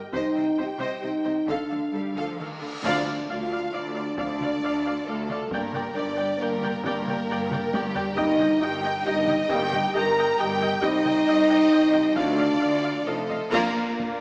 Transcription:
Already playing: french horn section G4
0.13 double bass section C2, cello section C3, french horn section D#4, viola section C5, violin section D#5 G5, taiko
0.35 double bass section C2, cello section C3, viola section C5, violin section D#5
0.57 double bass section C2, cello section C3, french horn section G4, viola section C5, violin section D#5
0.79 double bass section C2, cello section C3, viola section C5, violin section D#5
1.02 double bass section C2, cello section C3, french horn section D#4, viola section C5, violin section D#5
1.24 double bass section C2, cello section C3, viola section C5, violin section D#5
1.47 double bass section D2, cello section D3, french horn section D4, viola section A4, violin section F5, taiko, cymbal swell
1.70 double bass section D2, cello section D3, viola section A4, violin section F5
1.93 double bass section D2, cello section G3, viola section A4, violin section F5
2.15 double bass section D2, cello section F3, viola section A4, violin section F5
2.38 double bass section D2, cello section D#3, viola section A4, violin section F5
2.61 double bass section D2, cello section D3, viola section A4, violin section F5
2.82 double bass section D2, cello section D2, trombone section F3 D4, french horn section D4, string section D4 F4 A4 A5, viola section D5 F5, violin section D5, taiko, impact
3.06 viola section D5 F5
3.28 double bass section D2, cello section D2, french horn section F4, viola section D5 F5, violin section F5
3.51 viola section D5 F5
3.72 double bass section D2, cello section D2, french horn section D4, viola section D5 F5, violin section D5
3.96 viola section D5 F5
4.17 cello section D2, double bass section D2, trombone section F3 D4, french horn section D4, violin section D5, viola section D5 F5, taiko
4.40 viola section D5 F5, taiko mid
4.63 cello section D2, double bass section D2, viola section D5 F5
4.86 viola section D5 F5
5.06 cello section D2, double bass section D2, french horn section A3, violin section A4, viola section D5 F5
5.30 viola section D5 F5, taiko mid
5.51 double bass section G1, cello section G2, trombone section G3 D4, french horn section A#3, string section G4 A#4 G5, violin section A#4, viola section D5 G5, taiko
5.73 viola section D5 G5, taiko mid
5.95 double bass section G1, cello section G2, french horn section D4, violin section D5, viola section D5 G5
6.17 viola section D5 G5
6.39 double bass section G1, cello section G2, french horn section A#3, violin section A#4, viola section D5 G5
6.62 viola section D5 G5, taiko mid
6.84 double bass section G1, cello section G2, trombone section G3 D4, french horn section A#3, violin section A#4, viola section D5 G5, taiko
7.07 viola section D5 G5, taiko mid
7.29 double bass section G1, cello section G2, viola section D5 G5
7.51 viola section D5 G5, taiko mid
7.73 double bass section G1, cello section G2, french horn section G3, violin section G4, viola section D5 G5, taiko high
7.95 viola section D5 G5, taiko low
8.16 double bass section G1, cello section G2, trombone section G3 A#3, french horn section D#4, string section D#4, violin section D#5, viola section D#5 G5, taiko
8.39 viola section D#5 G5, taiko mid
8.61 double bass section G1, cello section G2, french horn section G4, viola section D#5 G5, violin section G5
8.84 viola section D#5 G5
9.06 double bass section G1, cello section G2, french horn section D#4, violin section D#5, viola section D#5 G5
9.27 viola section D#5 G5, taiko mid
9.48 double bass section G1, cello section G2, trombone section G3 A#3, french horn section G4, viola section D#5 G5, violin section G5, taiko
9.72 viola section D#5 G5, taiko mid
9.94 double bass section G1, cello section G2, french horn section A#4, viola section D#5 G5, violin section A#5
10.18 viola section D#5 G5
10.38 double bass section G1, cello section G2, french horn section G4, viola section D#5 G5, violin section G5
10.61 viola section D#5 G5, taiko mid
10.82 double bass section C2, cello section C2, trombone section G3 C4, french horn section D#4, string section G4 C5 G5, viola section D#5 G5, violin section D#5, taiko
11.05 viola section D#5 G5, taiko mid
11.27 double bass section C2, cello section C2, viola section D#5 G5
11.50 viola section D#5 G5
11.72 double bass section C2, cello section C2, viola section D#5 G5
11.94 viola section D#5 G5, taiko mid
12.16 cello section D2, double bass section D2, trombone section F3 D4, french horn section D4, string section F4 A4 D5 F5, violin section D5, viola section F5, taiko
12.38 viola section F5, taiko mid
12.60 cello section D2, double bass section D2, viola section F5
12.83 viola section F5
13.06 double bass section F1, cello section F2, trombone section F3 D#4, french horn section A3, violin section A4, string section C5 D#5, viola section D#5 F5
13.31 viola section D#5 F5, taiko mid
13.52 double bass section A#1, french horn section F3 D4, viola section A#3 F4, cello section A#3, trombone section A#3, violin section A#4 D5 A#5, concert bass drum, taiko, crash
13.75 double bass section A#1, viola section A#3
13.98 double bass section A#1, viola section A#3, taiko low

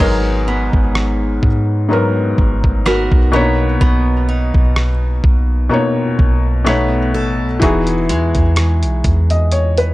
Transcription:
Already playing: steel-string acoustic guitar B3 D#4
0.00 808-style bass G#1, felt piano G#2 F#3 B3 A#4, steel-string acoustic guitar G#3, kick, crash
0.48 steel-string acoustic guitar B3
0.73 808-style bass G#1, kick
0.95 cross-stick
1.43 808-style bass G#2, kick
1.89 felt piano G#2 F#3 B3
1.93 felt piano A#4
2.38 808-style bass G#1, kick
2.64 kick
2.85 steel-string acoustic guitar B3 F#4 A#4, cross-stick
3.11 808-style bass B1, kick
3.32 felt piano B2 A#3 D4 C#5, steel-string acoustic guitar B3
3.41 felt piano D#4
3.81 808-style bass B1, steel-string acoustic guitar B3, kick
4.28 steel-string acoustic guitar D#4
4.54 808-style bass B1, kick
4.76 cross-stick
5.24 808-style bass B1, kick
5.70 felt piano B2 A#3 D#4
5.74 felt piano C#5
6.19 808-style bass B1, kick
6.65 felt piano B2 A3 D#4, steel-string acoustic guitar B3, cross-stick
6.69 felt piano C#5
7.14 808-style bass A1, steel-string acoustic guitar A4
7.41 808-style bass B1
7.60 808-style bass E1, felt piano E3 D#4 F#4, steel-string acoustic guitar E3, kick, closed hi-hat
7.64 felt piano G#4
7.87 closed hi-hat
8.09 808-style bass E2, steel-string acoustic guitar G#3, closed hi-hat
8.35 808-style bass E2, kick, closed hi-hat
8.56 cross-stick, closed hi-hat
8.83 808-style bass B1, closed hi-hat
9.04 808-style bass E2, kick, closed hi-hat
9.30 felt piano D#5, closed hi-hat
9.52 felt piano C#5, closed hi-hat
9.78 felt piano B4, closed hi-hat

